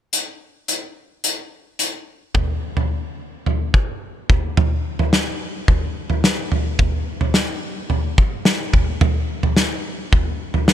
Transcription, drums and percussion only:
0.13 closed hi-hat soft
0.68 closed hi-hat soft
1.24 closed hi-hat soft
1.79 closed hi-hat soft
2.35 kick medium
2.35 floor tom medium
2.77 floor tom medium
3.46 floor tom soft
3.74 kick medium
4.30 kick medium
4.30 floor tom medium
4.57 floor tom medium
4.99 floor tom medium
5.13 snare medium
5.68 kick medium
5.68 floor tom medium
6.10 floor tom soft
6.24 snare medium
6.52 floor tom medium
6.79 kick loud
6.79 floor tom medium
7.21 floor tom medium
7.34 snare medium
7.90 floor tom medium
8.18 kick medium
8.45 snare medium
8.73 kick medium
8.73 floor tom medium
9.01 floor tom medium
9.43 floor tom medium
9.57 snare medium
10.13 kick medium
10.13 floor tom medium
10.54 floor tom soft
10.68 snare loud

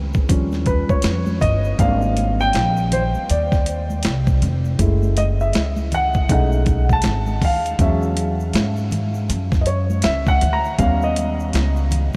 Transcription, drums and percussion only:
0.13 kick medium
0.13 shaker soft
0.29 kick loud
0.29 closed hi-hat medium
0.29 shaker medium
0.52 snare soft
0.52 shaker soft
0.66 kick medium
0.66 closed hi-hat medium
0.66 shaker soft
0.89 kick medium
0.89 high conga medium
0.89 shaker soft
1.02 snare loud
1.02 closed hi-hat medium
1.02 shaker medium
1.26 high conga medium
1.26 shaker soft
1.41 kick medium
1.41 closed hi-hat medium
1.41 low conga medium
1.41 shaker soft
1.64 shaker soft
1.79 kick loud
1.79 closed hi-hat medium
1.79 shaker medium
2.02 shaker soft
2.16 closed hi-hat medium
2.16 high conga soft
2.16 shaker soft
2.40 shaker soft
2.53 snare loud
2.53 closed hi-hat medium
2.53 shaker medium
2.77 shaker soft
2.92 closed hi-hat medium
2.92 low conga medium
2.92 shaker medium
3.14 shaker soft
3.30 closed hi-hat medium
3.30 shaker medium
3.52 kick loud
3.52 snare soft
3.52 shaker soft
3.66 closed hi-hat medium
3.66 shaker soft
3.90 high conga medium
3.90 shaker soft
4.03 snare loud
4.03 closed hi-hat medium
4.03 shaker medium
4.27 kick medium
4.27 high conga medium
4.27 shaker soft
4.42 closed hi-hat medium
4.42 low conga medium
4.42 shaker soft
4.65 shaker soft
4.79 kick loud
4.79 closed hi-hat medium
4.79 shaker medium
5.03 high conga soft
5.03 shaker soft
5.17 closed hi-hat medium
5.17 high conga soft
5.17 shaker soft
5.40 shaker soft
5.53 snare loud
5.53 closed hi-hat medium
5.53 shaker medium
5.76 high conga medium
5.76 shaker soft
5.92 closed hi-hat medium
5.92 low conga medium
5.92 shaker medium
6.14 kick medium
6.14 shaker medium
6.29 kick loud
6.29 closed hi-hat medium
6.29 shaker medium
6.52 shaker soft
6.66 kick medium
6.66 closed hi-hat medium
6.66 shaker soft
6.89 kick medium
6.89 high conga medium
6.89 shaker soft
7.02 snare loud
7.02 closed hi-hat medium
7.02 low conga medium
7.02 shaker medium
7.26 high conga medium
7.26 shaker soft
7.42 kick medium
7.42 open hi-hat soft
7.42 low conga medium
7.42 shaker soft
7.65 closed hi-hat medium
7.65 shaker soft
7.79 kick loud
7.79 closed hi-hat medium
7.79 shaker medium
8.02 shaker soft
8.17 closed hi-hat medium
8.17 high conga soft
8.17 shaker soft
8.40 shaker soft
8.53 snare loud
8.53 closed hi-hat medium
8.53 shaker medium
8.76 shaker soft
8.91 closed hi-hat medium
8.91 low conga medium
8.91 shaker medium
9.14 shaker medium
9.29 closed hi-hat medium
9.29 shaker medium
9.52 kick loud
9.52 snare soft
9.52 shaker soft
9.66 closed hi-hat medium
9.66 shaker soft
9.90 high conga medium
9.90 shaker soft
10.02 snare loud
10.02 closed hi-hat loud
10.02 shaker medium
10.26 kick loud
10.26 high conga medium
10.26 shaker soft
10.41 closed hi-hat medium
10.41 low conga medium
10.41 shaker soft
10.65 shaker soft
10.79 kick medium
10.79 closed hi-hat medium
10.79 shaker medium
11.02 shaker soft
11.16 closed hi-hat medium
11.16 high conga soft
11.16 shaker soft
11.40 shaker soft
11.53 snare loud
11.53 closed hi-hat medium
11.53 shaker medium
11.76 shaker soft
11.91 closed hi-hat medium
11.91 low conga medium
11.91 shaker medium
12.13 shaker medium

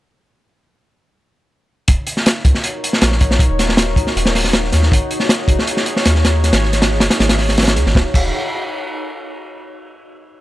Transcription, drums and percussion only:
1.88 kick loud
1.88 closed hi-hat medium
2.07 closed hi-hat medium
2.17 snare soft
2.26 snare loud
2.26 closed hi-hat medium
2.45 kick loud
2.45 closed hi-hat medium
2.55 snare soft
2.64 closed hi-hat medium
2.84 closed hi-hat medium
2.93 snare medium
3.02 snare loud
3.02 closed hi-hat medium
3.12 snare soft
3.21 kick loud
3.21 closed hi-hat medium
3.31 snare medium
3.39 kick loud
3.39 closed hi-hat medium
3.59 snare soft
3.59 closed hi-hat medium
3.69 snare soft
3.77 snare loud
3.77 closed hi-hat medium
3.96 kick medium
3.96 closed hi-hat medium
4.07 snare soft
4.17 closed hi-hat medium
4.26 snare medium
4.35 snare soft
4.35 open hi-hat medium
4.44 snare soft
4.53 snare loud
4.53 closed hi-hat medium
4.64 snare soft
4.72 snare soft
4.72 closed hi-hat medium
4.83 snare soft
4.92 kick loud
4.92 closed hi-hat loud
5.11 closed hi-hat medium
5.20 snare soft
5.29 snare loud
5.29 closed hi-hat medium
5.48 kick loud
5.48 closed hi-hat medium
5.59 snare soft
5.67 closed hi-hat medium
5.77 snare soft
5.86 closed hi-hat medium
5.96 snare soft
6.05 snare loud
6.05 closed hi-hat medium
6.15 snare soft
6.25 snare loud
6.25 closed hi-hat medium
6.44 snare soft
6.44 closed hi-hat medium
6.53 snare loud
6.53 closed hi-hat medium
6.63 snare soft
6.73 snare soft
6.73 closed hi-hat medium
6.82 snare loud
6.82 closed hi-hat medium
6.91 snare soft
7.00 snare loud
7.00 closed hi-hat medium
7.10 snare loud
7.10 closed hi-hat medium
7.20 snare loud
7.20 closed hi-hat medium
7.29 snare loud
7.29 closed hi-hat medium
7.39 snare medium
7.39 open hi-hat medium
7.49 snare soft
7.58 snare medium
7.58 closed hi-hat medium
7.62 snare medium
7.62 closed hi-hat medium
7.67 snare loud
7.67 closed hi-hat medium
7.76 snare soft
7.76 closed hi-hat medium
7.86 snare soft
7.95 kick loud
7.95 snare medium
8.14 kick loud
8.14 crash medium

